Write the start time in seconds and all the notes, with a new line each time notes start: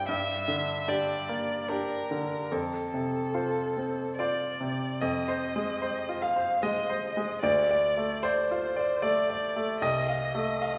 Already playing: G2 C4 E4 G4
0.09 G2 E5
0.48 D3
0.88 D4 G4 D5
1.29 A#3
1.69 D4 G4 A#4
2.11 D3
2.51 F2 A4
2.94 C3
3.34 F4 C5
3.77 C4
4.18 F4 C5 D5
4.61 C3
5.00 F2 D#5
5.28 C5
5.56 G#3
5.82 C5
6.09 F4
6.21 F5
6.36 C5
6.62 G#3 D#5
6.89 C5
7.17 G#3
7.43 D2 D5
7.71 D5
7.97 A3
8.23 C5 D5
8.51 F4
8.76 D5
9.02 A3 D5
9.30 D5
9.56 A3
9.82 C2 D#5
10.09 F5
10.35 A3
10.62 F5